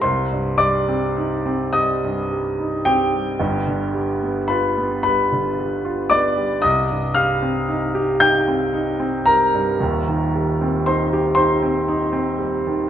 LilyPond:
<<
  \new Staff \with { instrumentName = "Grand piano" } { \time 6/8 \key c \minor \tempo 4. = 37 <c'' c'''>8 <d'' d'''>4 <ees'' ees'''>4 <g' g''>8~ | <g' g''>4 <b' b''>8 <b' b''>4 <d'' d'''>8 | <ees'' ees'''>8 <f'' f'''>4 <g'' g'''>4 <bes' bes''>8~ | <bes' bes''>4 <c'' c'''>8 <c'' c'''>4 r8 | }
  \new Staff \with { instrumentName = "Grand piano" } { \clef bass \time 6/8 \key c \minor c,16 g,16 g16 c'16 ees'16 c'16 g16 g,16 g16 ees'16 c'16 g16 | <g,, g,>16 d16 g16 b16 f'16 b16 g16 d16 g16 f'16 b16 g16 | c,16 g,16 g16 c'16 ees'16 g'16 ees'16 c'16 ees'16 c'16 g16 g,16 | <ees,, ees,>16 ees16 g16 c'16 ees'16 g'16 ees'16 c'16 ees'16 c'16 g16 ees16 | }
>>